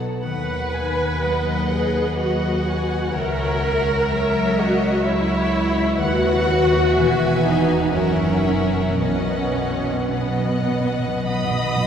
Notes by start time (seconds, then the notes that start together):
Already playing: B2 F#3 B3 A4 B4 F#5
0.24 D#2 D#3 B4 F#5
0.73 D#4 G#5
1.22 F#3 D#5 F#5
1.72 G#4 B4
2.19 F#4 D#5 F#5
2.67 B4 G#5
3.14 C#2 C#3 A#4 C#5 E5 F#5
3.62 C#4
4.09 F#3 C#5 E5
4.57 F#4 C#5 D#5
5.04 E4 C#5 E5 F#5
5.52 C#5
5.98 D#2 D#3 F#4 B4 F#5
6.47 F#4 B4
6.95 E1 E2 E3 B4 E5 G#5
7.45 D#4 E4 B4
7.95 F#1 F#2 C#4 A#4 E5 F#5
8.46 E4 A#4
8.99 B1 B2 C#4 B4 D#5 F#5
9.16 B2
9.25 B2
9.33 B2
9.41 B2
9.50 B2 B3
9.58 B2
9.67 B2
9.75 B2
9.84 B2
9.92 B2
10.00 B2
10.09 B2 F#3 B3 B4 D#5 F#5
10.18 B2
10.26 B2
10.34 B2
10.43 B2
10.53 B2
10.63 B2
10.69 B2 B4
10.81 B2
10.90 B2
10.99 B2
11.08 B2
11.16 B2
11.26 B2 D#5 F#5 B5 D#6
11.34 B2
11.43 B2
11.51 B2
11.60 B2
11.68 B2
11.76 B2
11.82 B4